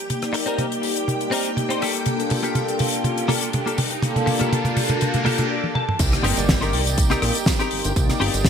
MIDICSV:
0, 0, Header, 1, 9, 480
1, 0, Start_track
1, 0, Tempo, 491803
1, 92, Time_signature, 4, 2, 24, 8
1, 8293, End_track
2, 0, Start_track
2, 0, Title_t, "String machine"
2, 0, Program_c, 0, 50
2, 0, Note_on_c, 0, 67, 83
2, 0, Note_on_c, 0, 79, 84
2, 5370, Note_off_c, 0, 67, 0
2, 5371, Note_off_c, 0, 79, 0
2, 5854, Note_on_c, 0, 79, 88
2, 5855, Note_on_c, 0, 67, 86
2, 8293, Note_off_c, 0, 67, 0
2, 8293, Note_off_c, 0, 79, 0
2, 8293, End_track
3, 0, Start_track
3, 0, Title_t, "Clean electric guitar"
3, 0, Program_c, 1, 27
3, 448, Note_on_c, 1, 60, 78
3, 457, Note_on_c, 1, 63, 79
3, 465, Note_on_c, 1, 70, 88
3, 630, Note_off_c, 1, 60, 0
3, 634, Note_off_c, 1, 63, 0
3, 638, Note_off_c, 1, 70, 0
3, 1280, Note_on_c, 1, 60, 111
3, 1289, Note_on_c, 1, 63, 103
3, 1298, Note_on_c, 1, 70, 121
3, 1470, Note_off_c, 1, 60, 0
3, 1474, Note_off_c, 1, 63, 0
3, 1478, Note_off_c, 1, 70, 0
3, 1648, Note_on_c, 1, 60, 86
3, 1658, Note_on_c, 1, 63, 77
3, 1667, Note_on_c, 1, 72, 93
3, 1761, Note_on_c, 1, 58, 94
3, 1766, Note_off_c, 1, 60, 0
3, 1766, Note_on_c, 1, 65, 78
3, 1771, Note_off_c, 1, 63, 0
3, 1772, Note_on_c, 1, 67, 80
3, 1775, Note_off_c, 1, 72, 0
3, 1778, Note_on_c, 1, 69, 99
3, 2156, Note_off_c, 1, 58, 0
3, 2159, Note_off_c, 1, 65, 0
3, 2162, Note_off_c, 1, 67, 0
3, 2165, Note_off_c, 1, 69, 0
3, 2368, Note_on_c, 1, 58, 85
3, 2374, Note_on_c, 1, 65, 77
3, 2380, Note_on_c, 1, 67, 82
3, 2386, Note_on_c, 1, 69, 94
3, 2550, Note_off_c, 1, 58, 0
3, 2553, Note_off_c, 1, 65, 0
3, 2556, Note_off_c, 1, 67, 0
3, 2558, Note_off_c, 1, 69, 0
3, 3203, Note_on_c, 1, 58, 114
3, 3208, Note_on_c, 1, 65, 107
3, 3214, Note_on_c, 1, 67, 99
3, 3220, Note_on_c, 1, 69, 127
3, 3391, Note_off_c, 1, 58, 0
3, 3393, Note_off_c, 1, 65, 0
3, 3396, Note_off_c, 1, 67, 0
3, 3400, Note_off_c, 1, 69, 0
3, 3571, Note_on_c, 1, 58, 87
3, 3576, Note_on_c, 1, 65, 80
3, 3582, Note_on_c, 1, 67, 83
3, 3588, Note_on_c, 1, 69, 93
3, 3687, Note_off_c, 1, 58, 0
3, 3690, Note_off_c, 1, 65, 0
3, 3693, Note_off_c, 1, 67, 0
3, 3696, Note_off_c, 1, 69, 0
3, 4288, Note_on_c, 1, 58, 87
3, 4293, Note_on_c, 1, 65, 79
3, 4299, Note_on_c, 1, 67, 83
3, 4305, Note_on_c, 1, 69, 97
3, 4470, Note_off_c, 1, 58, 0
3, 4472, Note_off_c, 1, 65, 0
3, 4475, Note_off_c, 1, 67, 0
3, 4478, Note_off_c, 1, 69, 0
3, 5122, Note_on_c, 1, 58, 123
3, 5129, Note_on_c, 1, 65, 112
3, 5134, Note_on_c, 1, 67, 109
3, 5140, Note_on_c, 1, 69, 123
3, 5311, Note_off_c, 1, 58, 0
3, 5314, Note_off_c, 1, 65, 0
3, 5316, Note_off_c, 1, 67, 0
3, 5320, Note_off_c, 1, 69, 0
3, 5371, Note_on_c, 1, 74, 77
3, 5594, Note_off_c, 1, 74, 0
3, 5613, Note_on_c, 1, 81, 77
3, 5835, Note_off_c, 1, 81, 0
3, 6084, Note_on_c, 1, 60, 116
3, 6090, Note_on_c, 1, 63, 112
3, 6095, Note_on_c, 1, 67, 112
3, 6101, Note_on_c, 1, 70, 127
3, 6215, Note_off_c, 1, 60, 0
3, 6219, Note_off_c, 1, 63, 0
3, 6221, Note_off_c, 1, 67, 0
3, 6224, Note_off_c, 1, 70, 0
3, 6451, Note_on_c, 1, 60, 88
3, 6458, Note_on_c, 1, 63, 79
3, 6464, Note_on_c, 1, 67, 77
3, 6469, Note_on_c, 1, 70, 100
3, 6631, Note_off_c, 1, 60, 0
3, 6635, Note_off_c, 1, 63, 0
3, 6638, Note_off_c, 1, 67, 0
3, 6641, Note_off_c, 1, 70, 0
3, 6930, Note_on_c, 1, 60, 119
3, 6936, Note_on_c, 1, 63, 103
3, 6942, Note_on_c, 1, 67, 102
3, 6948, Note_on_c, 1, 70, 126
3, 7174, Note_off_c, 1, 60, 0
3, 7178, Note_off_c, 1, 63, 0
3, 7181, Note_off_c, 1, 67, 0
3, 7184, Note_off_c, 1, 70, 0
3, 7412, Note_on_c, 1, 60, 86
3, 7418, Note_on_c, 1, 63, 84
3, 7423, Note_on_c, 1, 67, 81
3, 7429, Note_on_c, 1, 70, 98
3, 7712, Note_off_c, 1, 60, 0
3, 7715, Note_off_c, 1, 63, 0
3, 7717, Note_off_c, 1, 67, 0
3, 7720, Note_off_c, 1, 70, 0
3, 8003, Note_on_c, 1, 60, 115
3, 8008, Note_on_c, 1, 63, 114
3, 8014, Note_on_c, 1, 67, 114
3, 8020, Note_on_c, 1, 70, 127
3, 8135, Note_off_c, 1, 60, 0
3, 8138, Note_off_c, 1, 63, 0
3, 8141, Note_off_c, 1, 67, 0
3, 8144, Note_off_c, 1, 70, 0
3, 8293, End_track
4, 0, Start_track
4, 0, Title_t, "Analog synth pad"
4, 0, Program_c, 2, 89
4, 80, Note_on_c, 2, 58, 92
4, 86, Note_on_c, 2, 74, 89
4, 93, Note_on_c, 2, 63, 83
4, 99, Note_on_c, 2, 67, 104
4, 1259, Note_off_c, 2, 58, 0
4, 1262, Note_off_c, 2, 74, 0
4, 1265, Note_off_c, 2, 63, 0
4, 1269, Note_off_c, 2, 67, 0
4, 1287, Note_on_c, 2, 58, 78
4, 1288, Note_on_c, 2, 62, 72
4, 1292, Note_on_c, 2, 63, 68
4, 1296, Note_on_c, 2, 67, 88
4, 1359, Note_off_c, 2, 58, 0
4, 1360, Note_off_c, 2, 62, 0
4, 1362, Note_off_c, 2, 63, 0
4, 1364, Note_off_c, 2, 67, 0
4, 1411, Note_on_c, 2, 58, 70
4, 1414, Note_on_c, 2, 74, 65
4, 1417, Note_on_c, 2, 63, 65
4, 1422, Note_on_c, 2, 67, 82
4, 1754, Note_off_c, 2, 58, 0
4, 1755, Note_off_c, 2, 74, 0
4, 1757, Note_off_c, 2, 63, 0
4, 1759, Note_off_c, 2, 67, 0
4, 2001, Note_on_c, 2, 58, 78
4, 2007, Note_on_c, 2, 62, 69
4, 2013, Note_on_c, 2, 65, 73
4, 2019, Note_on_c, 2, 69, 86
4, 3179, Note_off_c, 2, 58, 0
4, 3182, Note_off_c, 2, 62, 0
4, 3185, Note_off_c, 2, 65, 0
4, 3188, Note_off_c, 2, 69, 0
4, 3205, Note_on_c, 2, 58, 79
4, 3210, Note_on_c, 2, 62, 70
4, 3213, Note_on_c, 2, 65, 70
4, 3217, Note_on_c, 2, 69, 86
4, 3278, Note_off_c, 2, 58, 0
4, 3281, Note_off_c, 2, 62, 0
4, 3282, Note_off_c, 2, 65, 0
4, 3284, Note_off_c, 2, 69, 0
4, 3921, Note_on_c, 2, 58, 103
4, 3927, Note_on_c, 2, 62, 90
4, 3935, Note_on_c, 2, 65, 93
4, 3941, Note_on_c, 2, 69, 110
4, 5099, Note_off_c, 2, 58, 0
4, 5102, Note_off_c, 2, 62, 0
4, 5106, Note_off_c, 2, 65, 0
4, 5109, Note_off_c, 2, 69, 0
4, 5124, Note_on_c, 2, 58, 76
4, 5131, Note_on_c, 2, 62, 69
4, 5136, Note_on_c, 2, 65, 72
4, 5143, Note_on_c, 2, 69, 84
4, 5368, Note_off_c, 2, 58, 0
4, 5371, Note_off_c, 2, 62, 0
4, 5374, Note_off_c, 2, 65, 0
4, 5377, Note_off_c, 2, 69, 0
4, 5844, Note_on_c, 2, 58, 81
4, 5851, Note_on_c, 2, 74, 69
4, 5857, Note_on_c, 2, 63, 70
4, 5864, Note_on_c, 2, 67, 85
4, 7021, Note_off_c, 2, 58, 0
4, 7024, Note_off_c, 2, 74, 0
4, 7027, Note_off_c, 2, 63, 0
4, 7031, Note_off_c, 2, 67, 0
4, 7049, Note_on_c, 2, 58, 81
4, 7052, Note_on_c, 2, 62, 72
4, 7056, Note_on_c, 2, 63, 70
4, 7059, Note_on_c, 2, 67, 92
4, 7120, Note_off_c, 2, 58, 0
4, 7122, Note_off_c, 2, 62, 0
4, 7124, Note_off_c, 2, 63, 0
4, 7125, Note_off_c, 2, 67, 0
4, 7762, Note_on_c, 2, 58, 99
4, 7768, Note_on_c, 2, 74, 90
4, 7775, Note_on_c, 2, 63, 87
4, 7781, Note_on_c, 2, 67, 110
4, 8293, Note_off_c, 2, 58, 0
4, 8293, Note_off_c, 2, 63, 0
4, 8293, Note_off_c, 2, 67, 0
4, 8293, Note_off_c, 2, 74, 0
4, 8293, End_track
5, 0, Start_track
5, 0, Title_t, "Analog synth bass"
5, 0, Program_c, 3, 38
5, 5852, Note_on_c, 3, 36, 102
5, 6020, Note_off_c, 3, 36, 0
5, 6093, Note_on_c, 3, 31, 87
5, 6179, Note_off_c, 3, 31, 0
5, 6220, Note_on_c, 3, 31, 90
5, 6573, Note_on_c, 3, 36, 105
5, 6588, Note_off_c, 3, 31, 0
5, 6995, Note_off_c, 3, 36, 0
5, 7054, Note_on_c, 3, 34, 92
5, 7139, Note_off_c, 3, 34, 0
5, 7535, Note_on_c, 3, 31, 47
5, 7635, Note_off_c, 3, 31, 0
5, 7662, Note_on_c, 3, 31, 88
5, 7737, Note_off_c, 3, 31, 0
5, 7773, Note_on_c, 3, 36, 104
5, 7940, Note_off_c, 3, 36, 0
5, 8014, Note_on_c, 3, 31, 87
5, 8099, Note_off_c, 3, 31, 0
5, 8141, Note_on_c, 3, 31, 88
5, 8293, Note_off_c, 3, 31, 0
5, 8293, End_track
6, 0, Start_track
6, 0, Title_t, "Impact"
6, 0, Program_c, 4, 103
6, 5853, Note_on_c, 4, 60, 77
6, 7772, Note_off_c, 4, 60, 0
6, 8293, End_track
7, 0, Start_track
7, 0, Title_t, "Riser"
7, 0, Program_c, 5, 103
7, 0, Note_on_c, 5, 60, 73
7, 5371, Note_off_c, 5, 60, 0
7, 8293, End_track
8, 0, Start_track
8, 0, Title_t, "Muted clean electric guitar strokes"
8, 319, Note_on_c, 9, 29, 114
8, 417, Note_off_c, 9, 29, 0
8, 799, Note_on_c, 9, 29, 33
8, 897, Note_off_c, 9, 29, 0
8, 2240, Note_on_c, 9, 29, 112
8, 2338, Note_off_c, 9, 29, 0
8, 2722, Note_on_c, 9, 29, 34
8, 2820, Note_off_c, 9, 29, 0
8, 3809, Note_on_c, 9, 29, 33
8, 3906, Note_off_c, 9, 29, 0
8, 4160, Note_on_c, 9, 29, 118
8, 4257, Note_off_c, 9, 29, 0
8, 4639, Note_on_c, 9, 29, 35
8, 4737, Note_off_c, 9, 29, 0
8, 6325, Note_on_c, 9, 29, 33
8, 6422, Note_off_c, 9, 29, 0
8, 6804, Note_on_c, 9, 29, 32
8, 6901, Note_off_c, 9, 29, 0
8, 8244, Note_on_c, 9, 29, 32
8, 8293, Note_off_c, 9, 29, 0
8, 8293, End_track
9, 0, Start_track
9, 0, Title_t, "Drums"
9, 97, Note_on_c, 9, 42, 77
9, 99, Note_on_c, 9, 47, 53
9, 194, Note_off_c, 9, 42, 0
9, 196, Note_off_c, 9, 47, 0
9, 216, Note_on_c, 9, 42, 50
9, 221, Note_on_c, 9, 37, 57
9, 314, Note_off_c, 9, 42, 0
9, 318, Note_off_c, 9, 37, 0
9, 331, Note_on_c, 9, 46, 100
9, 429, Note_off_c, 9, 46, 0
9, 456, Note_on_c, 9, 42, 49
9, 553, Note_off_c, 9, 42, 0
9, 570, Note_on_c, 9, 42, 73
9, 571, Note_on_c, 9, 47, 60
9, 668, Note_off_c, 9, 42, 0
9, 668, Note_off_c, 9, 47, 0
9, 701, Note_on_c, 9, 42, 48
9, 799, Note_off_c, 9, 42, 0
9, 811, Note_on_c, 9, 46, 109
9, 909, Note_off_c, 9, 46, 0
9, 940, Note_on_c, 9, 42, 63
9, 1037, Note_off_c, 9, 42, 0
9, 1054, Note_on_c, 9, 47, 60
9, 1061, Note_on_c, 9, 42, 66
9, 1152, Note_off_c, 9, 47, 0
9, 1159, Note_off_c, 9, 42, 0
9, 1178, Note_on_c, 9, 42, 50
9, 1275, Note_off_c, 9, 42, 0
9, 1289, Note_on_c, 9, 46, 105
9, 1387, Note_off_c, 9, 46, 0
9, 1413, Note_on_c, 9, 42, 52
9, 1511, Note_off_c, 9, 42, 0
9, 1532, Note_on_c, 9, 47, 62
9, 1539, Note_on_c, 9, 42, 71
9, 1629, Note_off_c, 9, 47, 0
9, 1636, Note_off_c, 9, 42, 0
9, 1662, Note_on_c, 9, 42, 56
9, 1759, Note_off_c, 9, 42, 0
9, 1776, Note_on_c, 9, 46, 108
9, 1781, Note_on_c, 9, 37, 58
9, 1873, Note_off_c, 9, 46, 0
9, 1879, Note_off_c, 9, 37, 0
9, 1903, Note_on_c, 9, 42, 48
9, 2001, Note_off_c, 9, 42, 0
9, 2007, Note_on_c, 9, 42, 81
9, 2014, Note_on_c, 9, 47, 72
9, 2104, Note_off_c, 9, 42, 0
9, 2112, Note_off_c, 9, 47, 0
9, 2144, Note_on_c, 9, 42, 47
9, 2241, Note_off_c, 9, 42, 0
9, 2246, Note_on_c, 9, 46, 100
9, 2257, Note_on_c, 9, 47, 78
9, 2344, Note_off_c, 9, 46, 0
9, 2355, Note_off_c, 9, 47, 0
9, 2383, Note_on_c, 9, 42, 52
9, 2481, Note_off_c, 9, 42, 0
9, 2491, Note_on_c, 9, 42, 74
9, 2491, Note_on_c, 9, 47, 72
9, 2588, Note_off_c, 9, 47, 0
9, 2589, Note_off_c, 9, 42, 0
9, 2619, Note_on_c, 9, 42, 50
9, 2717, Note_off_c, 9, 42, 0
9, 2724, Note_on_c, 9, 46, 123
9, 2736, Note_on_c, 9, 47, 85
9, 2822, Note_off_c, 9, 46, 0
9, 2833, Note_off_c, 9, 47, 0
9, 2864, Note_on_c, 9, 42, 58
9, 2962, Note_off_c, 9, 42, 0
9, 2970, Note_on_c, 9, 47, 78
9, 2973, Note_on_c, 9, 42, 68
9, 3068, Note_off_c, 9, 47, 0
9, 3071, Note_off_c, 9, 42, 0
9, 3100, Note_on_c, 9, 42, 55
9, 3197, Note_off_c, 9, 42, 0
9, 3209, Note_on_c, 9, 47, 81
9, 3213, Note_on_c, 9, 46, 119
9, 3307, Note_off_c, 9, 47, 0
9, 3311, Note_off_c, 9, 46, 0
9, 3343, Note_on_c, 9, 42, 60
9, 3441, Note_off_c, 9, 42, 0
9, 3448, Note_on_c, 9, 42, 71
9, 3456, Note_on_c, 9, 47, 77
9, 3546, Note_off_c, 9, 42, 0
9, 3554, Note_off_c, 9, 47, 0
9, 3585, Note_on_c, 9, 42, 52
9, 3683, Note_off_c, 9, 42, 0
9, 3688, Note_on_c, 9, 46, 112
9, 3693, Note_on_c, 9, 47, 91
9, 3786, Note_off_c, 9, 46, 0
9, 3790, Note_off_c, 9, 47, 0
9, 3817, Note_on_c, 9, 42, 47
9, 3914, Note_off_c, 9, 42, 0
9, 3928, Note_on_c, 9, 47, 102
9, 3936, Note_on_c, 9, 42, 79
9, 4026, Note_off_c, 9, 47, 0
9, 4033, Note_off_c, 9, 42, 0
9, 4061, Note_on_c, 9, 47, 79
9, 4062, Note_on_c, 9, 42, 50
9, 4158, Note_off_c, 9, 47, 0
9, 4160, Note_off_c, 9, 42, 0
9, 4169, Note_on_c, 9, 46, 107
9, 4172, Note_on_c, 9, 47, 92
9, 4267, Note_off_c, 9, 46, 0
9, 4269, Note_off_c, 9, 47, 0
9, 4302, Note_on_c, 9, 42, 51
9, 4306, Note_on_c, 9, 47, 82
9, 4400, Note_off_c, 9, 42, 0
9, 4403, Note_off_c, 9, 47, 0
9, 4417, Note_on_c, 9, 47, 106
9, 4420, Note_on_c, 9, 42, 78
9, 4515, Note_off_c, 9, 47, 0
9, 4517, Note_off_c, 9, 42, 0
9, 4537, Note_on_c, 9, 47, 94
9, 4539, Note_on_c, 9, 42, 50
9, 4634, Note_off_c, 9, 47, 0
9, 4637, Note_off_c, 9, 42, 0
9, 4651, Note_on_c, 9, 46, 121
9, 4653, Note_on_c, 9, 47, 96
9, 4749, Note_off_c, 9, 46, 0
9, 4751, Note_off_c, 9, 47, 0
9, 4772, Note_on_c, 9, 42, 52
9, 4779, Note_on_c, 9, 47, 96
9, 4870, Note_off_c, 9, 42, 0
9, 4877, Note_off_c, 9, 47, 0
9, 4889, Note_on_c, 9, 42, 80
9, 4901, Note_on_c, 9, 47, 102
9, 4986, Note_off_c, 9, 42, 0
9, 4999, Note_off_c, 9, 47, 0
9, 5014, Note_on_c, 9, 42, 52
9, 5022, Note_on_c, 9, 47, 98
9, 5112, Note_off_c, 9, 42, 0
9, 5120, Note_off_c, 9, 47, 0
9, 5133, Note_on_c, 9, 46, 108
9, 5138, Note_on_c, 9, 47, 99
9, 5230, Note_off_c, 9, 46, 0
9, 5235, Note_off_c, 9, 47, 0
9, 5253, Note_on_c, 9, 42, 63
9, 5260, Note_on_c, 9, 47, 86
9, 5350, Note_off_c, 9, 42, 0
9, 5358, Note_off_c, 9, 47, 0
9, 5503, Note_on_c, 9, 48, 55
9, 5600, Note_off_c, 9, 48, 0
9, 5616, Note_on_c, 9, 47, 70
9, 5713, Note_off_c, 9, 47, 0
9, 5745, Note_on_c, 9, 45, 70
9, 5843, Note_off_c, 9, 45, 0
9, 5847, Note_on_c, 9, 49, 115
9, 5851, Note_on_c, 9, 42, 100
9, 5852, Note_on_c, 9, 36, 117
9, 5856, Note_on_c, 9, 54, 62
9, 5945, Note_off_c, 9, 49, 0
9, 5948, Note_off_c, 9, 42, 0
9, 5950, Note_off_c, 9, 36, 0
9, 5954, Note_off_c, 9, 54, 0
9, 5976, Note_on_c, 9, 54, 37
9, 5985, Note_on_c, 9, 37, 63
9, 5986, Note_on_c, 9, 42, 61
9, 6073, Note_off_c, 9, 54, 0
9, 6083, Note_off_c, 9, 37, 0
9, 6084, Note_off_c, 9, 42, 0
9, 6092, Note_on_c, 9, 46, 111
9, 6190, Note_off_c, 9, 46, 0
9, 6217, Note_on_c, 9, 54, 73
9, 6219, Note_on_c, 9, 42, 56
9, 6314, Note_off_c, 9, 54, 0
9, 6316, Note_off_c, 9, 42, 0
9, 6332, Note_on_c, 9, 36, 110
9, 6333, Note_on_c, 9, 38, 111
9, 6333, Note_on_c, 9, 42, 91
9, 6337, Note_on_c, 9, 54, 62
9, 6430, Note_off_c, 9, 36, 0
9, 6430, Note_off_c, 9, 38, 0
9, 6431, Note_off_c, 9, 42, 0
9, 6435, Note_off_c, 9, 54, 0
9, 6463, Note_on_c, 9, 54, 37
9, 6466, Note_on_c, 9, 42, 51
9, 6560, Note_off_c, 9, 54, 0
9, 6564, Note_off_c, 9, 42, 0
9, 6569, Note_on_c, 9, 46, 111
9, 6667, Note_off_c, 9, 46, 0
9, 6704, Note_on_c, 9, 42, 62
9, 6706, Note_on_c, 9, 54, 79
9, 6801, Note_off_c, 9, 42, 0
9, 6804, Note_off_c, 9, 54, 0
9, 6809, Note_on_c, 9, 42, 108
9, 6812, Note_on_c, 9, 36, 121
9, 6817, Note_on_c, 9, 54, 70
9, 6906, Note_off_c, 9, 42, 0
9, 6910, Note_off_c, 9, 36, 0
9, 6915, Note_off_c, 9, 54, 0
9, 6939, Note_on_c, 9, 54, 38
9, 6942, Note_on_c, 9, 42, 57
9, 6944, Note_on_c, 9, 37, 80
9, 7036, Note_off_c, 9, 54, 0
9, 7040, Note_off_c, 9, 42, 0
9, 7041, Note_off_c, 9, 37, 0
9, 7048, Note_on_c, 9, 46, 105
9, 7049, Note_on_c, 9, 37, 76
9, 7145, Note_off_c, 9, 46, 0
9, 7146, Note_off_c, 9, 37, 0
9, 7175, Note_on_c, 9, 54, 80
9, 7180, Note_on_c, 9, 42, 52
9, 7273, Note_off_c, 9, 54, 0
9, 7278, Note_off_c, 9, 42, 0
9, 7283, Note_on_c, 9, 38, 122
9, 7291, Note_on_c, 9, 42, 95
9, 7292, Note_on_c, 9, 36, 104
9, 7295, Note_on_c, 9, 54, 66
9, 7381, Note_off_c, 9, 38, 0
9, 7389, Note_off_c, 9, 42, 0
9, 7390, Note_off_c, 9, 36, 0
9, 7393, Note_off_c, 9, 54, 0
9, 7418, Note_on_c, 9, 42, 59
9, 7420, Note_on_c, 9, 54, 37
9, 7515, Note_off_c, 9, 42, 0
9, 7518, Note_off_c, 9, 54, 0
9, 7522, Note_on_c, 9, 46, 101
9, 7620, Note_off_c, 9, 46, 0
9, 7656, Note_on_c, 9, 54, 74
9, 7663, Note_on_c, 9, 42, 57
9, 7753, Note_off_c, 9, 54, 0
9, 7760, Note_off_c, 9, 42, 0
9, 7771, Note_on_c, 9, 54, 61
9, 7772, Note_on_c, 9, 36, 122
9, 7775, Note_on_c, 9, 42, 107
9, 7868, Note_off_c, 9, 54, 0
9, 7869, Note_off_c, 9, 36, 0
9, 7872, Note_off_c, 9, 42, 0
9, 7899, Note_on_c, 9, 38, 35
9, 7900, Note_on_c, 9, 42, 54
9, 7900, Note_on_c, 9, 54, 42
9, 7903, Note_on_c, 9, 37, 58
9, 7997, Note_off_c, 9, 38, 0
9, 7998, Note_off_c, 9, 42, 0
9, 7998, Note_off_c, 9, 54, 0
9, 8001, Note_off_c, 9, 37, 0
9, 8016, Note_on_c, 9, 46, 114
9, 8114, Note_off_c, 9, 46, 0
9, 8137, Note_on_c, 9, 42, 53
9, 8139, Note_on_c, 9, 54, 79
9, 8235, Note_off_c, 9, 42, 0
9, 8236, Note_off_c, 9, 54, 0
9, 8243, Note_on_c, 9, 38, 124
9, 8252, Note_on_c, 9, 36, 116
9, 8252, Note_on_c, 9, 42, 86
9, 8253, Note_on_c, 9, 54, 68
9, 8293, Note_off_c, 9, 36, 0
9, 8293, Note_off_c, 9, 38, 0
9, 8293, Note_off_c, 9, 42, 0
9, 8293, Note_off_c, 9, 54, 0
9, 8293, End_track
0, 0, End_of_file